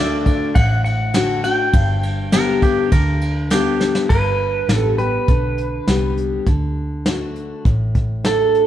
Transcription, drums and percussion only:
0, 0, Header, 1, 2, 480
1, 0, Start_track
1, 0, Key_signature, 1, "major"
1, 0, Tempo, 591716
1, 1408, Time_signature, 4, 2, 24, 8
1, 7032, End_track
2, 0, Start_track
2, 0, Title_t, "Drums"
2, 212, Note_on_c, 9, 36, 80
2, 213, Note_on_c, 9, 51, 65
2, 293, Note_off_c, 9, 36, 0
2, 294, Note_off_c, 9, 51, 0
2, 451, Note_on_c, 9, 36, 114
2, 451, Note_on_c, 9, 51, 89
2, 532, Note_off_c, 9, 36, 0
2, 533, Note_off_c, 9, 51, 0
2, 692, Note_on_c, 9, 51, 59
2, 773, Note_off_c, 9, 51, 0
2, 927, Note_on_c, 9, 38, 119
2, 927, Note_on_c, 9, 51, 85
2, 1008, Note_off_c, 9, 38, 0
2, 1008, Note_off_c, 9, 51, 0
2, 1166, Note_on_c, 9, 51, 75
2, 1248, Note_off_c, 9, 51, 0
2, 1407, Note_on_c, 9, 51, 88
2, 1408, Note_on_c, 9, 36, 120
2, 1488, Note_off_c, 9, 51, 0
2, 1489, Note_off_c, 9, 36, 0
2, 1647, Note_on_c, 9, 51, 73
2, 1728, Note_off_c, 9, 51, 0
2, 1885, Note_on_c, 9, 38, 115
2, 1885, Note_on_c, 9, 51, 97
2, 1966, Note_off_c, 9, 38, 0
2, 1966, Note_off_c, 9, 51, 0
2, 2127, Note_on_c, 9, 51, 68
2, 2128, Note_on_c, 9, 36, 85
2, 2208, Note_off_c, 9, 51, 0
2, 2209, Note_off_c, 9, 36, 0
2, 2366, Note_on_c, 9, 51, 83
2, 2368, Note_on_c, 9, 36, 110
2, 2447, Note_off_c, 9, 51, 0
2, 2449, Note_off_c, 9, 36, 0
2, 2606, Note_on_c, 9, 51, 63
2, 2687, Note_off_c, 9, 51, 0
2, 2847, Note_on_c, 9, 38, 110
2, 2847, Note_on_c, 9, 51, 84
2, 2928, Note_off_c, 9, 38, 0
2, 2928, Note_off_c, 9, 51, 0
2, 3087, Note_on_c, 9, 38, 73
2, 3168, Note_off_c, 9, 38, 0
2, 3203, Note_on_c, 9, 38, 90
2, 3284, Note_off_c, 9, 38, 0
2, 3324, Note_on_c, 9, 49, 81
2, 3326, Note_on_c, 9, 36, 94
2, 3405, Note_off_c, 9, 49, 0
2, 3407, Note_off_c, 9, 36, 0
2, 3805, Note_on_c, 9, 38, 108
2, 3805, Note_on_c, 9, 42, 59
2, 3886, Note_off_c, 9, 38, 0
2, 3886, Note_off_c, 9, 42, 0
2, 4044, Note_on_c, 9, 42, 51
2, 4125, Note_off_c, 9, 42, 0
2, 4284, Note_on_c, 9, 42, 57
2, 4285, Note_on_c, 9, 36, 95
2, 4365, Note_off_c, 9, 42, 0
2, 4367, Note_off_c, 9, 36, 0
2, 4525, Note_on_c, 9, 42, 57
2, 4606, Note_off_c, 9, 42, 0
2, 4766, Note_on_c, 9, 38, 100
2, 4766, Note_on_c, 9, 42, 56
2, 4847, Note_off_c, 9, 38, 0
2, 4847, Note_off_c, 9, 42, 0
2, 5007, Note_on_c, 9, 42, 59
2, 5088, Note_off_c, 9, 42, 0
2, 5244, Note_on_c, 9, 42, 55
2, 5245, Note_on_c, 9, 36, 93
2, 5325, Note_off_c, 9, 42, 0
2, 5326, Note_off_c, 9, 36, 0
2, 5725, Note_on_c, 9, 38, 103
2, 5725, Note_on_c, 9, 42, 58
2, 5806, Note_off_c, 9, 38, 0
2, 5806, Note_off_c, 9, 42, 0
2, 5966, Note_on_c, 9, 42, 56
2, 6047, Note_off_c, 9, 42, 0
2, 6208, Note_on_c, 9, 36, 95
2, 6208, Note_on_c, 9, 42, 49
2, 6289, Note_off_c, 9, 36, 0
2, 6289, Note_off_c, 9, 42, 0
2, 6448, Note_on_c, 9, 42, 51
2, 6450, Note_on_c, 9, 36, 71
2, 6529, Note_off_c, 9, 42, 0
2, 6531, Note_off_c, 9, 36, 0
2, 6688, Note_on_c, 9, 38, 99
2, 6688, Note_on_c, 9, 42, 55
2, 6769, Note_off_c, 9, 38, 0
2, 6769, Note_off_c, 9, 42, 0
2, 6932, Note_on_c, 9, 42, 58
2, 7013, Note_off_c, 9, 42, 0
2, 7032, End_track
0, 0, End_of_file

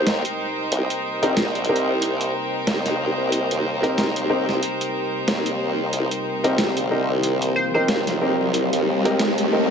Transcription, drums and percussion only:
0, 0, Header, 1, 2, 480
1, 0, Start_track
1, 0, Key_signature, -3, "minor"
1, 0, Tempo, 652174
1, 529, Time_signature, 4, 2, 24, 8
1, 7142, End_track
2, 0, Start_track
2, 0, Title_t, "Drums"
2, 49, Note_on_c, 9, 38, 122
2, 49, Note_on_c, 9, 42, 83
2, 122, Note_off_c, 9, 38, 0
2, 122, Note_off_c, 9, 42, 0
2, 184, Note_on_c, 9, 42, 55
2, 257, Note_off_c, 9, 42, 0
2, 529, Note_on_c, 9, 42, 81
2, 602, Note_off_c, 9, 42, 0
2, 665, Note_on_c, 9, 42, 54
2, 738, Note_off_c, 9, 42, 0
2, 904, Note_on_c, 9, 42, 37
2, 977, Note_off_c, 9, 42, 0
2, 1006, Note_on_c, 9, 38, 117
2, 1006, Note_on_c, 9, 42, 77
2, 1080, Note_off_c, 9, 38, 0
2, 1080, Note_off_c, 9, 42, 0
2, 1143, Note_on_c, 9, 42, 24
2, 1211, Note_off_c, 9, 42, 0
2, 1211, Note_on_c, 9, 42, 31
2, 1285, Note_off_c, 9, 42, 0
2, 1294, Note_on_c, 9, 42, 43
2, 1367, Note_off_c, 9, 42, 0
2, 1486, Note_on_c, 9, 42, 82
2, 1560, Note_off_c, 9, 42, 0
2, 1625, Note_on_c, 9, 42, 53
2, 1698, Note_off_c, 9, 42, 0
2, 1966, Note_on_c, 9, 38, 124
2, 1966, Note_on_c, 9, 42, 79
2, 2040, Note_off_c, 9, 38, 0
2, 2040, Note_off_c, 9, 42, 0
2, 2103, Note_on_c, 9, 40, 37
2, 2103, Note_on_c, 9, 42, 53
2, 2176, Note_off_c, 9, 40, 0
2, 2176, Note_off_c, 9, 42, 0
2, 2445, Note_on_c, 9, 42, 80
2, 2519, Note_off_c, 9, 42, 0
2, 2584, Note_on_c, 9, 42, 54
2, 2658, Note_off_c, 9, 42, 0
2, 2825, Note_on_c, 9, 42, 36
2, 2898, Note_off_c, 9, 42, 0
2, 2929, Note_on_c, 9, 38, 116
2, 2929, Note_on_c, 9, 42, 74
2, 3002, Note_off_c, 9, 38, 0
2, 3002, Note_off_c, 9, 42, 0
2, 3064, Note_on_c, 9, 42, 52
2, 3137, Note_off_c, 9, 42, 0
2, 3303, Note_on_c, 9, 40, 49
2, 3377, Note_off_c, 9, 40, 0
2, 3405, Note_on_c, 9, 42, 80
2, 3479, Note_off_c, 9, 42, 0
2, 3541, Note_on_c, 9, 42, 51
2, 3615, Note_off_c, 9, 42, 0
2, 3884, Note_on_c, 9, 38, 121
2, 3884, Note_on_c, 9, 42, 78
2, 3958, Note_off_c, 9, 38, 0
2, 3958, Note_off_c, 9, 42, 0
2, 4019, Note_on_c, 9, 42, 50
2, 4092, Note_off_c, 9, 42, 0
2, 4364, Note_on_c, 9, 42, 74
2, 4437, Note_off_c, 9, 42, 0
2, 4500, Note_on_c, 9, 42, 52
2, 4574, Note_off_c, 9, 42, 0
2, 4742, Note_on_c, 9, 42, 35
2, 4816, Note_off_c, 9, 42, 0
2, 4845, Note_on_c, 9, 38, 117
2, 4845, Note_on_c, 9, 42, 72
2, 4918, Note_off_c, 9, 38, 0
2, 4918, Note_off_c, 9, 42, 0
2, 4981, Note_on_c, 9, 42, 49
2, 5055, Note_off_c, 9, 42, 0
2, 5324, Note_on_c, 9, 42, 76
2, 5398, Note_off_c, 9, 42, 0
2, 5460, Note_on_c, 9, 42, 52
2, 5533, Note_off_c, 9, 42, 0
2, 5803, Note_on_c, 9, 38, 116
2, 5803, Note_on_c, 9, 42, 79
2, 5876, Note_off_c, 9, 38, 0
2, 5876, Note_off_c, 9, 42, 0
2, 5941, Note_on_c, 9, 40, 38
2, 5941, Note_on_c, 9, 42, 50
2, 6015, Note_off_c, 9, 40, 0
2, 6015, Note_off_c, 9, 42, 0
2, 6286, Note_on_c, 9, 42, 76
2, 6359, Note_off_c, 9, 42, 0
2, 6425, Note_on_c, 9, 42, 54
2, 6499, Note_off_c, 9, 42, 0
2, 6664, Note_on_c, 9, 42, 34
2, 6737, Note_off_c, 9, 42, 0
2, 6767, Note_on_c, 9, 38, 113
2, 6767, Note_on_c, 9, 42, 76
2, 6841, Note_off_c, 9, 38, 0
2, 6841, Note_off_c, 9, 42, 0
2, 6904, Note_on_c, 9, 42, 49
2, 6977, Note_off_c, 9, 42, 0
2, 7142, End_track
0, 0, End_of_file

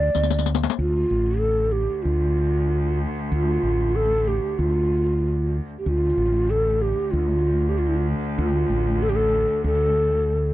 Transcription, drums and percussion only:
0, 0, Header, 1, 2, 480
1, 0, Start_track
1, 0, Key_signature, -1, "minor"
1, 0, Tempo, 632911
1, 595, Time_signature, 4, 2, 24, 8
1, 7992, End_track
2, 0, Start_track
2, 0, Title_t, "Riq"
2, 112, Note_on_c, 9, 54, 54
2, 177, Note_off_c, 9, 54, 0
2, 177, Note_on_c, 9, 54, 56
2, 231, Note_off_c, 9, 54, 0
2, 231, Note_on_c, 9, 54, 64
2, 293, Note_off_c, 9, 54, 0
2, 293, Note_on_c, 9, 54, 63
2, 349, Note_off_c, 9, 54, 0
2, 349, Note_on_c, 9, 54, 68
2, 415, Note_off_c, 9, 54, 0
2, 415, Note_on_c, 9, 54, 81
2, 481, Note_off_c, 9, 54, 0
2, 481, Note_on_c, 9, 54, 89
2, 529, Note_off_c, 9, 54, 0
2, 529, Note_on_c, 9, 54, 94
2, 605, Note_off_c, 9, 54, 0
2, 7992, End_track
0, 0, End_of_file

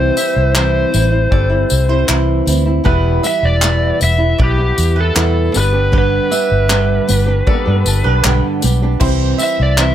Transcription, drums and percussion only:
0, 0, Header, 1, 2, 480
1, 0, Start_track
1, 0, Key_signature, 0, "major"
1, 0, Tempo, 769231
1, 1787, Time_signature, 4, 2, 24, 8
1, 6208, End_track
2, 0, Start_track
2, 0, Title_t, "Drums"
2, 106, Note_on_c, 9, 54, 72
2, 168, Note_off_c, 9, 54, 0
2, 345, Note_on_c, 9, 39, 114
2, 407, Note_off_c, 9, 39, 0
2, 585, Note_on_c, 9, 54, 59
2, 648, Note_off_c, 9, 54, 0
2, 823, Note_on_c, 9, 36, 103
2, 886, Note_off_c, 9, 36, 0
2, 1060, Note_on_c, 9, 54, 69
2, 1122, Note_off_c, 9, 54, 0
2, 1303, Note_on_c, 9, 39, 104
2, 1365, Note_off_c, 9, 39, 0
2, 1544, Note_on_c, 9, 54, 64
2, 1606, Note_off_c, 9, 54, 0
2, 1784, Note_on_c, 9, 36, 103
2, 1847, Note_off_c, 9, 36, 0
2, 2022, Note_on_c, 9, 54, 70
2, 2084, Note_off_c, 9, 54, 0
2, 2259, Note_on_c, 9, 39, 116
2, 2321, Note_off_c, 9, 39, 0
2, 2501, Note_on_c, 9, 54, 66
2, 2564, Note_off_c, 9, 54, 0
2, 2743, Note_on_c, 9, 36, 120
2, 2806, Note_off_c, 9, 36, 0
2, 2981, Note_on_c, 9, 54, 65
2, 3044, Note_off_c, 9, 54, 0
2, 3222, Note_on_c, 9, 39, 105
2, 3285, Note_off_c, 9, 39, 0
2, 3459, Note_on_c, 9, 54, 65
2, 3522, Note_off_c, 9, 54, 0
2, 3702, Note_on_c, 9, 36, 109
2, 3765, Note_off_c, 9, 36, 0
2, 3942, Note_on_c, 9, 54, 73
2, 4005, Note_off_c, 9, 54, 0
2, 4181, Note_on_c, 9, 39, 121
2, 4243, Note_off_c, 9, 39, 0
2, 4422, Note_on_c, 9, 54, 67
2, 4484, Note_off_c, 9, 54, 0
2, 4663, Note_on_c, 9, 36, 106
2, 4725, Note_off_c, 9, 36, 0
2, 4903, Note_on_c, 9, 54, 70
2, 4965, Note_off_c, 9, 54, 0
2, 5144, Note_on_c, 9, 39, 101
2, 5206, Note_off_c, 9, 39, 0
2, 5380, Note_on_c, 9, 54, 67
2, 5443, Note_off_c, 9, 54, 0
2, 5619, Note_on_c, 9, 49, 106
2, 5622, Note_on_c, 9, 36, 113
2, 5682, Note_off_c, 9, 49, 0
2, 5685, Note_off_c, 9, 36, 0
2, 5862, Note_on_c, 9, 54, 65
2, 5924, Note_off_c, 9, 54, 0
2, 6102, Note_on_c, 9, 39, 116
2, 6164, Note_off_c, 9, 39, 0
2, 6208, End_track
0, 0, End_of_file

